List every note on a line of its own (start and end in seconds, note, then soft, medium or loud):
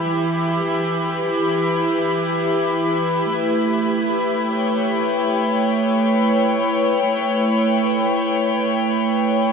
0.00 3.32 E3 medium
0.00 9.53 E4 medium
0.00 5.94 G4 medium
0.00 9.53 B4 medium
0.00 4.39 B5 medium
3.31 9.53 A3 medium
4.49 9.53 C#5 medium
4.49 9.53 G5 medium